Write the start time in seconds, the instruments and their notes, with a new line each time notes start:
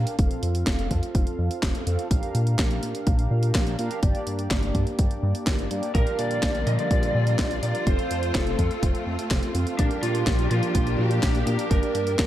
Already playing: analog polysynth D4 G4 A#4 F5
0.07 closed hi-hat
0.19 analog synth bass F1, analog polysynth C4 F4 A4 F5, kick, closed hi-hat
0.31 closed hi-hat
0.43 analog synth bass F2, closed hi-hat
0.55 closed hi-hat
0.67 analog synth bass F1, kick, snare, clap, closed hi-hat
0.79 closed hi-hat
0.91 analog synth bass F2, kick, closed hi-hat
1.03 closed hi-hat
1.15 analog synth bass F1, kick, closed hi-hat
1.27 closed hi-hat
1.39 analog synth bass F2
1.51 closed hi-hat
1.63 analog synth bass F1, kick, snare, clap, closed hi-hat
1.75 closed hi-hat
1.87 analog synth bass F2, analog polysynth C4 F4 A4 F5, closed hi-hat
1.99 closed hi-hat
2.11 analog synth bass A#1, analog polysynth D4 G4 A#4 F5, kick, closed hi-hat
2.23 closed hi-hat
2.35 analog synth bass A#2, closed hi-hat
2.47 closed hi-hat
2.59 analog synth bass A#1, kick, snare, clap, closed hi-hat
2.71 closed hi-hat
2.83 analog synth bass A#2, closed hi-hat
2.95 closed hi-hat
3.07 analog synth bass A#1, kick, closed hi-hat
3.19 closed hi-hat
3.31 analog synth bass A#2
3.43 closed hi-hat
3.55 analog synth bass A#1, kick, snare, clap, closed hi-hat
3.67 closed hi-hat
3.79 analog synth bass A#2, analog polysynth D4 G4 A#4 F5, closed hi-hat
3.91 closed hi-hat
4.03 analog synth bass G1, analog polysynth A#3 D4 G4 D5, kick, closed hi-hat
4.15 closed hi-hat
4.27 analog synth bass G2, closed hi-hat
4.39 closed hi-hat
4.51 analog synth bass G1, kick, snare, clap, closed hi-hat
4.63 closed hi-hat
4.75 analog synth bass G2, kick, closed hi-hat
4.87 closed hi-hat
4.99 analog synth bass G1, kick, closed hi-hat
5.11 closed hi-hat
5.23 analog synth bass G2
5.35 closed hi-hat
5.47 analog synth bass G1, kick, snare, clap, closed hi-hat
5.59 closed hi-hat
5.71 analog synth bass G2, analog polysynth A#3 D4 G4 D5, closed hi-hat
5.83 closed hi-hat
5.95 analog synth bass A#1, string section D3 F3 G3 A#3 F4, analog polysynth D4 G4 A#4 F5, lead electric guitar A#4, kick, closed hi-hat
6.07 closed hi-hat
6.19 analog synth bass A#2, lead electric guitar D5, closed hi-hat
6.31 closed hi-hat
6.43 analog synth bass A#1, kick, snare, clap, closed hi-hat
6.55 closed hi-hat
6.67 analog synth bass A#2, lead electric guitar D#5, closed hi-hat
6.79 lead electric guitar D5, closed hi-hat
6.91 analog synth bass A#1, kick, closed hi-hat
7.03 closed hi-hat
7.15 analog synth bass A#2
7.27 closed hi-hat
7.39 analog synth bass A#1, kick, snare, clap, closed hi-hat
7.51 closed hi-hat
7.63 analog synth bass A#2, analog polysynth D4 G4 A#4 F5, lead electric guitar D5, closed hi-hat
7.75 closed hi-hat
7.87 analog synth bass F1, string section A3 C4, analog polysynth C4 F4 F5, lead electric guitar C5, kick, closed hi-hat
7.99 closed hi-hat
8.11 analog synth bass F2, closed hi-hat
8.23 closed hi-hat
8.35 analog synth bass F1, lead electric guitar A4, kick, snare, clap, closed hi-hat
8.47 closed hi-hat
8.59 analog synth bass F2, kick, closed hi-hat
8.71 closed hi-hat
8.83 analog synth bass F1, kick, closed hi-hat
8.95 closed hi-hat
9.07 analog synth bass F2
9.19 closed hi-hat
9.31 analog synth bass F1, kick, snare, clap, closed hi-hat
9.43 closed hi-hat
9.55 analog synth bass F2, analog polysynth C4 F4 A4 F5, closed hi-hat
9.67 closed hi-hat
9.79 analog synth bass A#1, string section F3 G3 A#3 D4 G4, lead electric guitar D4, analog polysynth G4, kick, closed hi-hat
9.91 closed hi-hat
10.03 analog synth bass A#2, lead electric guitar F4, closed hi-hat
10.15 closed hi-hat
10.27 analog synth bass A#1, kick, snare, clap, closed hi-hat
10.39 closed hi-hat
10.51 analog synth bass A#2, lead electric guitar F4, closed hi-hat
10.63 closed hi-hat
10.75 analog synth bass A#1, kick, closed hi-hat
10.87 closed hi-hat
10.99 analog synth bass A#2, lead electric guitar G4
11.11 closed hi-hat
11.23 analog synth bass A#1, kick, snare, clap, closed hi-hat
11.35 closed hi-hat
11.47 analog synth bass A#2, analog polysynth D4 G4 A#4 F5, lead electric guitar G4, closed hi-hat
11.59 closed hi-hat
11.71 analog synth bass G1, string section A#3, analog polysynth A#3 D4 G4 D5, lead electric guitar A#4, kick, closed hi-hat
11.83 closed hi-hat
11.95 analog synth bass G2, closed hi-hat
12.07 closed hi-hat
12.19 analog synth bass G1, lead electric guitar A#4, kick, snare, clap, closed hi-hat